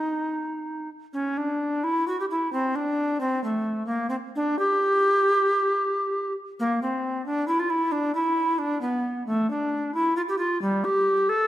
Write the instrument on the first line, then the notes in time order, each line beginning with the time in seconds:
recorder
Already playing: D#4
1.13 C#4
1.38 D4
1.84 E4
2.08 F#4
2.20 G4
2.31 E4
2.53 C4
2.76 D4
3.21 C4
3.44 A3
3.86 A#3
4.10 C4
4.36 D4
4.59 G4
6.60 A#3
6.82 C4
7.26 D4
7.48 E4
7.60 F4
7.70 E4
7.92 D4
8.15 E4
8.59 D4
8.81 B3
9.27 A3
9.50 D4
9.94 E4
10.17 F4
10.29 G4
10.38 F4
10.62 G3
10.84 G4
11.29 A4